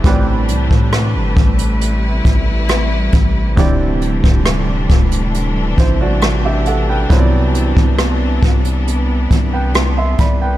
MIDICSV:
0, 0, Header, 1, 5, 480
1, 0, Start_track
1, 0, Tempo, 882353
1, 23, Time_signature, 4, 2, 24, 8
1, 5753, End_track
2, 0, Start_track
2, 0, Title_t, "Grand piano"
2, 0, Program_c, 0, 0
2, 0, Control_c, 0, 64, 127
2, 21, Note_on_c, 0, 45, 71
2, 24, Note_on_c, 0, 52, 62
2, 28, Note_on_c, 0, 60, 61
2, 29, Control_c, 0, 64, 0
2, 31, Note_on_c, 0, 67, 63
2, 35, Note_on_c, 0, 71, 66
2, 39, Note_on_c, 0, 74, 75
2, 124, Control_c, 0, 64, 127
2, 1920, Note_off_c, 0, 45, 0
2, 1922, Note_off_c, 0, 52, 0
2, 1924, Note_off_c, 0, 60, 0
2, 1925, Note_off_c, 0, 67, 0
2, 1927, Note_off_c, 0, 71, 0
2, 1929, Note_off_c, 0, 74, 0
2, 1938, Note_on_c, 0, 50, 75
2, 1942, Note_on_c, 0, 60, 64
2, 1948, Note_on_c, 0, 64, 65
2, 1950, Control_c, 0, 64, 0
2, 1952, Note_on_c, 0, 67, 66
2, 1957, Note_on_c, 0, 74, 80
2, 2052, Control_c, 0, 64, 127
2, 3124, Note_off_c, 0, 64, 0
2, 3126, Note_off_c, 0, 67, 0
2, 3128, Note_off_c, 0, 74, 0
2, 3149, Note_on_c, 0, 72, 60
2, 3153, Note_on_c, 0, 64, 51
2, 3260, Note_off_c, 0, 72, 0
2, 3262, Note_off_c, 0, 64, 0
2, 3269, Note_on_c, 0, 74, 64
2, 3273, Note_on_c, 0, 66, 57
2, 3495, Note_off_c, 0, 74, 0
2, 3497, Note_off_c, 0, 66, 0
2, 3510, Note_on_c, 0, 76, 69
2, 3512, Note_on_c, 0, 67, 55
2, 3621, Note_off_c, 0, 76, 0
2, 3622, Note_off_c, 0, 67, 0
2, 3626, Note_on_c, 0, 78, 62
2, 3631, Note_on_c, 0, 69, 56
2, 3739, Note_off_c, 0, 78, 0
2, 3741, Note_off_c, 0, 69, 0
2, 3749, Note_on_c, 0, 79, 62
2, 3752, Note_on_c, 0, 71, 54
2, 3839, Note_off_c, 0, 50, 0
2, 3841, Note_off_c, 0, 60, 0
2, 3859, Note_on_c, 0, 48, 72
2, 3862, Note_on_c, 0, 59, 67
2, 3867, Note_on_c, 0, 64, 66
2, 3871, Control_c, 0, 64, 0
2, 3873, Note_on_c, 0, 54, 67
2, 3877, Note_on_c, 0, 72, 59
2, 3906, Note_off_c, 0, 72, 0
2, 3912, Note_on_c, 0, 74, 78
2, 3954, Control_c, 0, 64, 127
2, 3974, Note_off_c, 0, 79, 0
2, 3976, Note_off_c, 0, 71, 0
2, 5066, Note_off_c, 0, 74, 0
2, 5187, Note_on_c, 0, 79, 62
2, 5190, Note_on_c, 0, 71, 52
2, 5413, Note_off_c, 0, 79, 0
2, 5415, Note_off_c, 0, 71, 0
2, 5424, Note_on_c, 0, 84, 66
2, 5428, Note_on_c, 0, 76, 55
2, 5538, Note_off_c, 0, 84, 0
2, 5540, Note_off_c, 0, 76, 0
2, 5546, Note_on_c, 0, 83, 65
2, 5549, Note_on_c, 0, 74, 57
2, 5659, Note_off_c, 0, 83, 0
2, 5660, Note_off_c, 0, 74, 0
2, 5667, Note_on_c, 0, 79, 63
2, 5670, Note_on_c, 0, 71, 52
2, 5753, Note_off_c, 0, 48, 0
2, 5753, Note_off_c, 0, 54, 0
2, 5753, Note_off_c, 0, 59, 0
2, 5753, Note_off_c, 0, 64, 0
2, 5753, Note_off_c, 0, 71, 0
2, 5753, Note_off_c, 0, 79, 0
2, 5753, End_track
3, 0, Start_track
3, 0, Title_t, "String section"
3, 0, Program_c, 1, 48
3, 0, Note_on_c, 1, 48, 73
3, 0, Note_on_c, 1, 62, 76
3, 22, Note_on_c, 1, 55, 64
3, 22, Note_on_c, 1, 57, 61
3, 22, Note_on_c, 1, 71, 66
3, 968, Note_off_c, 1, 62, 0
3, 983, Note_on_c, 1, 64, 83
3, 1923, Note_off_c, 1, 57, 0
3, 1924, Note_off_c, 1, 71, 0
3, 1933, Note_off_c, 1, 64, 0
3, 1945, Note_on_c, 1, 57, 64
3, 1946, Note_on_c, 1, 52, 65
3, 1946, Note_on_c, 1, 62, 80
3, 3841, Note_off_c, 1, 55, 0
3, 3845, Note_off_c, 1, 57, 0
3, 3862, Note_on_c, 1, 59, 65
3, 5753, Note_off_c, 1, 48, 0
3, 5753, Note_off_c, 1, 52, 0
3, 5753, Note_off_c, 1, 59, 0
3, 5753, Note_off_c, 1, 62, 0
3, 5753, End_track
4, 0, Start_track
4, 0, Title_t, "808-style bass"
4, 0, Program_c, 2, 38
4, 25, Note_on_c, 2, 33, 95
4, 266, Note_on_c, 2, 36, 103
4, 274, Note_off_c, 2, 33, 0
4, 379, Note_off_c, 2, 36, 0
4, 387, Note_on_c, 2, 45, 100
4, 625, Note_on_c, 2, 31, 94
4, 633, Note_off_c, 2, 45, 0
4, 738, Note_off_c, 2, 31, 0
4, 746, Note_on_c, 2, 33, 108
4, 1205, Note_off_c, 2, 33, 0
4, 1226, Note_on_c, 2, 33, 103
4, 1686, Note_off_c, 2, 33, 0
4, 1707, Note_on_c, 2, 33, 101
4, 1935, Note_off_c, 2, 33, 0
4, 1946, Note_on_c, 2, 26, 106
4, 2290, Note_off_c, 2, 26, 0
4, 2308, Note_on_c, 2, 26, 94
4, 2651, Note_off_c, 2, 26, 0
4, 2666, Note_on_c, 2, 26, 97
4, 3126, Note_off_c, 2, 26, 0
4, 3146, Note_on_c, 2, 33, 104
4, 3843, Note_off_c, 2, 33, 0
4, 3866, Note_on_c, 2, 36, 111
4, 4210, Note_off_c, 2, 36, 0
4, 4226, Note_on_c, 2, 36, 99
4, 4571, Note_off_c, 2, 36, 0
4, 4585, Note_on_c, 2, 36, 103
4, 5045, Note_off_c, 2, 36, 0
4, 5065, Note_on_c, 2, 36, 105
4, 5525, Note_off_c, 2, 36, 0
4, 5545, Note_on_c, 2, 36, 102
4, 5753, Note_off_c, 2, 36, 0
4, 5753, End_track
5, 0, Start_track
5, 0, Title_t, "Drums"
5, 23, Note_on_c, 9, 36, 120
5, 24, Note_on_c, 9, 42, 59
5, 77, Note_off_c, 9, 36, 0
5, 78, Note_off_c, 9, 42, 0
5, 264, Note_on_c, 9, 42, 62
5, 318, Note_off_c, 9, 42, 0
5, 385, Note_on_c, 9, 36, 88
5, 440, Note_off_c, 9, 36, 0
5, 504, Note_on_c, 9, 37, 92
5, 505, Note_on_c, 9, 42, 63
5, 559, Note_off_c, 9, 37, 0
5, 559, Note_off_c, 9, 42, 0
5, 743, Note_on_c, 9, 36, 98
5, 743, Note_on_c, 9, 42, 38
5, 797, Note_off_c, 9, 42, 0
5, 798, Note_off_c, 9, 36, 0
5, 863, Note_on_c, 9, 42, 64
5, 917, Note_off_c, 9, 42, 0
5, 987, Note_on_c, 9, 42, 68
5, 1041, Note_off_c, 9, 42, 0
5, 1224, Note_on_c, 9, 36, 79
5, 1226, Note_on_c, 9, 42, 61
5, 1279, Note_off_c, 9, 36, 0
5, 1280, Note_off_c, 9, 42, 0
5, 1461, Note_on_c, 9, 42, 70
5, 1466, Note_on_c, 9, 37, 102
5, 1515, Note_off_c, 9, 42, 0
5, 1521, Note_off_c, 9, 37, 0
5, 1700, Note_on_c, 9, 42, 66
5, 1704, Note_on_c, 9, 36, 84
5, 1755, Note_off_c, 9, 42, 0
5, 1758, Note_off_c, 9, 36, 0
5, 1944, Note_on_c, 9, 36, 118
5, 1945, Note_on_c, 9, 42, 65
5, 1998, Note_off_c, 9, 36, 0
5, 1999, Note_off_c, 9, 42, 0
5, 2185, Note_on_c, 9, 42, 57
5, 2239, Note_off_c, 9, 42, 0
5, 2306, Note_on_c, 9, 36, 89
5, 2360, Note_off_c, 9, 36, 0
5, 2424, Note_on_c, 9, 37, 92
5, 2424, Note_on_c, 9, 42, 64
5, 2478, Note_off_c, 9, 37, 0
5, 2479, Note_off_c, 9, 42, 0
5, 2664, Note_on_c, 9, 36, 101
5, 2664, Note_on_c, 9, 42, 41
5, 2718, Note_off_c, 9, 36, 0
5, 2718, Note_off_c, 9, 42, 0
5, 2783, Note_on_c, 9, 42, 65
5, 2838, Note_off_c, 9, 42, 0
5, 2908, Note_on_c, 9, 42, 68
5, 2962, Note_off_c, 9, 42, 0
5, 3144, Note_on_c, 9, 36, 81
5, 3146, Note_on_c, 9, 42, 59
5, 3199, Note_off_c, 9, 36, 0
5, 3200, Note_off_c, 9, 42, 0
5, 3381, Note_on_c, 9, 42, 68
5, 3386, Note_on_c, 9, 37, 100
5, 3435, Note_off_c, 9, 42, 0
5, 3441, Note_off_c, 9, 37, 0
5, 3621, Note_on_c, 9, 42, 62
5, 3675, Note_off_c, 9, 42, 0
5, 3863, Note_on_c, 9, 42, 62
5, 3864, Note_on_c, 9, 36, 111
5, 3918, Note_off_c, 9, 36, 0
5, 3918, Note_off_c, 9, 42, 0
5, 4105, Note_on_c, 9, 42, 62
5, 4160, Note_off_c, 9, 42, 0
5, 4225, Note_on_c, 9, 36, 91
5, 4279, Note_off_c, 9, 36, 0
5, 4344, Note_on_c, 9, 37, 89
5, 4344, Note_on_c, 9, 42, 66
5, 4399, Note_off_c, 9, 37, 0
5, 4399, Note_off_c, 9, 42, 0
5, 4583, Note_on_c, 9, 42, 41
5, 4584, Note_on_c, 9, 36, 101
5, 4638, Note_off_c, 9, 36, 0
5, 4638, Note_off_c, 9, 42, 0
5, 4704, Note_on_c, 9, 42, 66
5, 4759, Note_off_c, 9, 42, 0
5, 4829, Note_on_c, 9, 42, 70
5, 4883, Note_off_c, 9, 42, 0
5, 5064, Note_on_c, 9, 36, 79
5, 5065, Note_on_c, 9, 42, 62
5, 5118, Note_off_c, 9, 36, 0
5, 5120, Note_off_c, 9, 42, 0
5, 5301, Note_on_c, 9, 42, 69
5, 5306, Note_on_c, 9, 37, 101
5, 5355, Note_off_c, 9, 42, 0
5, 5360, Note_off_c, 9, 37, 0
5, 5540, Note_on_c, 9, 42, 62
5, 5543, Note_on_c, 9, 36, 86
5, 5595, Note_off_c, 9, 42, 0
5, 5598, Note_off_c, 9, 36, 0
5, 5753, End_track
0, 0, End_of_file